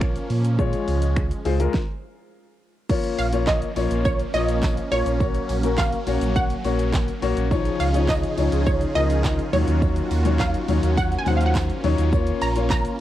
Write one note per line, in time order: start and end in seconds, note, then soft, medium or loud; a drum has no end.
0.00 0.17 A#1 medium
0.00 1.70 F3 medium
0.00 0.33 A#3 medium
0.00 0.56 A#3 medium
0.00 1.70 C#4 medium
0.00 0.33 F4 medium
0.00 0.33 C#5 loud
0.00 finger snap loud
0.00 kick loud
0.00 shaker medium
0.16 closed hi-hat medium
0.16 shaker soft
0.30 0.74 A#2 loud
0.30 open hi-hat medium
0.30 shaker soft
0.45 closed hi-hat medium
0.45 shaker medium
0.59 1.26 G#3 medium
0.59 1.73 G#3 medium
0.59 1.26 F4 medium
0.59 1.26 C#5 loud
0.59 kick loud
0.59 shaker medium
0.73 closed hi-hat medium
0.73 shaker medium
0.88 1.32 C#2 medium
0.88 open hi-hat medium
0.88 shaker medium
1.02 closed hi-hat medium
1.02 shaker medium
1.16 finger snap loud
1.16 kick loud
1.16 shaker medium
1.31 closed hi-hat medium
1.31 shaker medium
1.45 1.68 C#2 loud
1.45 1.56 G#3 medium
1.45 1.57 F4 medium
1.45 1.57 C5 loud
1.45 open hi-hat medium
1.45 shaker soft
1.60 1.74 G#3 medium
1.60 1.74 F4 medium
1.60 1.74 A#4 loud
1.60 closed hi-hat medium
1.60 shaker medium
1.74 kick loud
1.74 snare medium
2.89 5.18 F3 medium
2.89 3.23 A#3 medium
2.89 7.47 A#3 medium
2.89 7.47 C#4 medium
2.89 3.23 F4 medium
2.89 3.23 C#5 loud
2.89 kick loud
2.89 crash loud
2.89 tambourine soft
2.89 shaker medium
3.04 closed hi-hat medium
3.04 shaker medium
3.18 3.63 A#1 loud
3.18 3.48 F5 loud
3.18 open hi-hat medium
3.18 tambourine medium
3.18 shaker medium
3.33 3.66 A#3 medium
3.33 3.66 F4 medium
3.33 3.67 C#5 medium
3.33 closed hi-hat medium
3.33 shaker medium
3.47 4.01 D#5 medium
3.47 kick loud
3.47 snare medium
3.47 clap loud
3.47 tambourine medium
3.47 shaker medium
3.62 closed hi-hat medium
3.62 shaker medium
3.76 3.87 A#1 medium
3.76 4.21 A#3 medium
3.76 4.21 F4 medium
3.76 4.21 C#5 medium
3.76 open hi-hat medium
3.76 tambourine medium
3.76 shaker soft
3.91 4.24 A#1 medium
3.91 closed hi-hat medium
3.91 shaker medium
4.05 4.35 C#5 medium
4.05 kick loud
4.05 tambourine soft
4.05 shaker medium
4.19 closed hi-hat soft
4.19 shaker medium
4.34 4.78 A#1 medium
4.34 4.79 A#3 medium
4.34 4.79 F4 medium
4.34 4.79 C#5 medium
4.34 4.93 D#5 loud
4.34 open hi-hat medium
4.34 tambourine soft
4.34 shaker soft
4.48 closed hi-hat medium
4.48 shaker medium
4.63 kick loud
4.63 snare medium
4.63 clap loud
4.63 tambourine medium
4.63 shaker medium
4.77 closed hi-hat medium
4.77 shaker soft
4.91 5.03 A#1 loud
4.91 5.14 A#3 medium
4.91 5.14 F4 medium
4.91 5.74 C#5 loud
4.91 5.14 C#5 medium
4.91 open hi-hat medium
4.91 shaker soft
5.06 5.39 A#1 medium
5.06 closed hi-hat medium
5.06 shaker medium
5.20 7.49 F#3 medium
5.20 5.54 A#3 medium
5.20 5.54 F#4 medium
5.20 5.54 C#5 medium
5.20 kick loud
5.20 tambourine soft
5.20 shaker medium
5.35 closed hi-hat medium
5.35 shaker medium
5.49 5.93 A#1 medium
5.49 open hi-hat medium
5.49 tambourine medium
5.49 shaker medium
5.63 5.97 A#3 medium
5.63 5.97 F#4 medium
5.63 5.97 A#4 medium
5.63 closed hi-hat medium
5.63 shaker medium
5.78 6.37 F5 loud
5.78 kick loud
5.78 snare medium
5.78 clap loud
5.78 tambourine medium
5.78 shaker medium
5.93 closed hi-hat medium
5.93 shaker medium
6.07 6.18 A#1 loud
6.07 6.51 A#3 medium
6.07 6.52 F#4 medium
6.07 6.52 C#5 medium
6.07 open hi-hat medium
6.07 tambourine medium
6.07 shaker soft
6.21 6.54 A#1 medium
6.21 closed hi-hat medium
6.21 shaker medium
6.36 6.89 F#5 loud
6.36 kick loud
6.36 tambourine soft
6.36 shaker medium
6.50 closed hi-hat medium
6.50 shaker soft
6.64 7.09 A#1 loud
6.64 7.09 A#3 medium
6.64 7.09 F#4 medium
6.64 7.09 C#5 medium
6.64 open hi-hat medium
6.64 tambourine soft
6.64 shaker soft
6.79 closed hi-hat medium
6.79 shaker medium
6.93 kick loud
6.93 snare medium
6.93 clap loud
6.93 tambourine medium
6.93 shaker medium
7.08 closed hi-hat soft
7.08 shaker medium
7.22 7.33 A#1 loud
7.22 7.45 A#3 medium
7.22 7.45 F#4 medium
7.22 7.45 C#5 loud
7.22 open hi-hat medium
7.22 tambourine soft
7.22 shaker soft
7.37 7.70 A#1 medium
7.37 closed hi-hat medium
7.37 shaker medium
7.51 9.51 C#3 medium
7.51 7.85 F3 medium
7.51 13.00 C#4 medium
7.51 9.51 D#4 medium
7.51 7.85 D#4 medium
7.51 13.00 F4 medium
7.51 9.51 G#4 medium
7.51 7.85 C#5 loud
7.51 kick loud
7.51 tambourine soft
7.51 shaker medium
7.65 closed hi-hat medium
7.65 shaker medium
7.80 8.24 C#2 medium
7.80 8.07 F5 medium
7.80 open hi-hat medium
7.80 tambourine medium
7.80 shaker medium
7.94 8.28 F3 medium
7.94 8.28 D#4 medium
7.94 8.28 C#5 medium
7.94 closed hi-hat medium
7.94 shaker medium
8.09 8.63 D#5 medium
8.09 kick loud
8.09 snare medium
8.09 clap loud
8.09 tambourine medium
8.09 shaker medium
8.23 closed hi-hat medium
8.23 shaker medium
8.38 8.49 C#2 medium
8.38 8.82 F3 medium
8.38 8.82 D#4 medium
8.38 8.83 C#5 medium
8.38 open hi-hat medium
8.38 tambourine medium
8.38 shaker medium
8.52 8.85 C#2 medium
8.52 closed hi-hat medium
8.52 shaker medium
8.66 8.93 C#5 medium
8.66 kick loud
8.66 tambourine soft
8.66 shaker medium
8.81 closed hi-hat medium
8.81 shaker medium
8.95 9.40 C#2 loud
8.95 9.40 F3 medium
8.95 9.40 D#4 medium
8.95 9.40 A#4 medium
8.95 9.55 D#5 loud
8.95 open hi-hat medium
8.95 tambourine soft
8.95 shaker soft
9.10 closed hi-hat medium
9.10 shaker medium
9.24 kick loud
9.24 snare medium
9.24 clap loud
9.24 tambourine medium
9.24 shaker medium
9.39 closed hi-hat medium
9.39 shaker medium
9.53 9.64 D#2 loud
9.53 12.10 D#3 medium
9.53 10.11 F#3 medium
9.53 13.00 A#3 medium
9.53 10.11 D#4 medium
9.53 12.10 F#4 medium
9.53 10.36 C#5 loud
9.53 10.11 C#5 medium
9.53 open hi-hat medium
9.53 tambourine soft
9.53 shaker soft
9.67 10.01 D#2 medium
9.67 closed hi-hat medium
9.67 shaker medium
9.82 kick loud
9.82 tambourine soft
9.82 shaker medium
9.96 closed hi-hat medium
9.96 shaker medium
10.11 10.55 D#2 medium
10.11 open hi-hat medium
10.11 tambourine medium
10.11 shaker medium
10.25 10.59 F#3 medium
10.25 10.59 D#4 medium
10.25 10.59 C#5 medium
10.25 closed hi-hat medium
10.25 shaker medium
10.39 10.99 F5 loud
10.39 kick loud
10.39 snare medium
10.39 clap loud
10.39 tambourine medium
10.39 shaker medium
10.54 closed hi-hat medium
10.54 shaker medium
10.68 10.80 D#2 loud
10.68 11.13 F#3 medium
10.68 11.13 D#4 medium
10.68 11.13 C#5 medium
10.68 open hi-hat medium
10.68 tambourine medium
10.68 shaker soft
10.83 11.16 D#2 medium
10.83 closed hi-hat medium
10.83 shaker medium
10.97 11.17 F#5 loud
10.97 kick loud
10.97 tambourine soft
10.97 shaker medium
11.12 closed hi-hat medium
11.12 shaker medium
11.19 11.28 G#5 medium
11.26 11.70 D#2 medium
11.26 11.71 F#3 medium
11.26 11.71 D#4 medium
11.26 11.71 C5 medium
11.26 11.37 F#5 medium
11.26 open hi-hat medium
11.26 tambourine soft
11.26 shaker soft
11.37 11.46 F5 medium
11.37 closed hi-hat medium
11.37 shaker medium
11.46 11.55 F#5 medium
11.55 kick loud
11.55 snare medium
11.55 clap loud
11.55 tambourine medium
11.55 shaker medium
11.70 closed hi-hat soft
11.70 shaker soft
11.84 11.95 D#2 loud
11.84 12.06 F#3 medium
11.84 12.06 D#4 medium
11.84 12.06 C#5 loud
11.84 open hi-hat medium
11.84 shaker soft
11.98 12.32 D#2 medium
11.98 closed hi-hat medium
11.98 shaker medium
12.13 12.46 A#3 medium
12.13 12.46 F4 medium
12.13 12.46 C#5 loud
12.13 kick loud
12.13 tambourine soft
12.13 shaker medium
12.27 closed hi-hat medium
12.27 shaker medium
12.41 12.86 A#1 loud
12.41 12.55 A#5 loud
12.41 open hi-hat medium
12.41 tambourine medium
12.41 shaker medium
12.56 12.89 A#3 medium
12.56 12.89 F4 medium
12.56 12.90 C#5 medium
12.56 closed hi-hat medium
12.56 shaker medium
12.70 13.00 A#5 loud
12.70 kick loud
12.70 snare medium
12.70 clap loud
12.70 tambourine medium
12.70 shaker medium
12.85 closed hi-hat medium
12.85 shaker medium